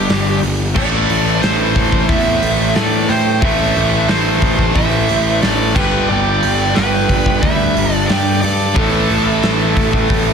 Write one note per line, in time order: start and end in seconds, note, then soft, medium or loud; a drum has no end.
0.00 0.41 G2 medium
0.00 0.42 D3 medium
0.00 0.42 G3 medium
0.00 0.39 D4 medium
0.00 0.39 G4 medium
0.09 0.40 G1 loud
0.09 snare loud
0.09 open hi-hat medium
0.43 0.73 G1 medium
0.43 open hi-hat medium
0.75 1.06 A1 medium
0.75 3.40 A2 medium
0.75 3.41 E3 loud
0.75 3.41 A3 loud
0.75 1.39 A4 medium
0.75 1.39 D5 loud
0.75 kick loud
0.75 crash loud
1.09 1.40 A1 medium
1.09 open hi-hat medium
1.41 1.73 A1 medium
1.41 2.06 A4 medium
1.41 2.10 C5 medium
1.41 snare loud
1.41 open hi-hat medium
1.76 2.06 A1 medium
1.76 kick medium
1.76 open hi-hat medium
1.92 kick medium
2.09 2.40 E2 loud
2.09 2.72 C5 loud
2.09 2.75 E5 loud
2.09 kick loud
2.09 open hi-hat medium
2.43 2.73 A1 medium
2.43 open hi-hat medium
2.75 3.06 A2 medium
2.75 3.07 A4 medium
2.75 3.10 D5 loud
2.75 snare loud
2.75 open hi-hat medium
3.09 3.40 A2 loud
3.09 3.40 G4 medium
3.09 3.43 C5 medium
3.09 open hi-hat medium
3.41 3.73 A1 medium
3.41 5.73 A2 medium
3.41 5.74 E3 loud
3.41 5.75 A3 loud
3.41 4.05 C5 loud
3.41 4.10 E5 loud
3.41 kick loud
3.41 open hi-hat medium
3.75 4.06 A1 medium
3.75 open hi-hat medium
4.08 4.40 A1 loud
4.08 4.72 A4 medium
4.08 4.77 C5 medium
4.08 snare loud
4.08 open hi-hat medium
4.42 4.73 A1 medium
4.42 kick loud
4.42 open hi-hat medium
4.59 kick medium
4.75 5.06 A1 medium
4.75 5.39 C5 medium
4.75 5.42 E5 medium
4.75 kick loud
4.75 open hi-hat medium
5.09 5.40 A1 medium
5.09 open hi-hat medium
5.42 5.73 A1 loud
5.42 5.74 A4 medium
5.42 5.77 D5 medium
5.42 snare loud
5.42 open hi-hat medium
5.74 6.06 G1 loud
5.74 8.41 G2 medium
5.74 8.41 D3 medium
5.74 8.42 G3 medium
5.74 6.07 G4 medium
5.74 6.09 B4 medium
5.74 kick loud
5.74 crash medium
6.09 6.40 G1 medium
6.09 6.72 G4 medium
6.09 6.78 D5 loud
6.43 6.73 G1 medium
6.43 open hi-hat medium
6.75 7.07 G1 loud
6.75 7.39 G4 medium
6.75 7.44 B4 medium
6.75 snare medium
6.75 open hi-hat medium
7.09 7.40 G1 medium
7.09 kick medium
7.09 open hi-hat medium
7.26 kick medium
7.42 7.73 D2 medium
7.42 7.90 B4 medium
7.42 7.94 E5 loud
7.42 kick loud
7.42 open hi-hat medium
7.76 8.07 G1 loud
7.76 open hi-hat medium
7.90 8.05 A4 medium
7.94 8.07 D5 loud
8.08 8.40 G2 medium
8.08 8.41 G4 medium
8.08 8.40 D5 loud
8.08 snare loud
8.08 open hi-hat medium
8.41 8.74 G2 loud
8.41 8.74 A4 medium
8.41 8.77 D5 medium
8.41 open hi-hat medium
8.75 9.07 A1 medium
8.75 10.33 A2 loud
8.75 10.33 E3 medium
8.75 10.33 A3 medium
8.75 10.33 E4 medium
8.75 10.33 A4 medium
8.75 kick loud
9.10 9.41 A1 medium
9.10 open hi-hat medium
9.43 9.74 A1 medium
9.43 snare loud
9.43 open hi-hat medium
9.77 10.07 A1 medium
9.77 kick loud
9.77 open hi-hat medium
9.93 kick medium
10.10 10.33 A1 loud
10.10 kick loud
10.10 open hi-hat medium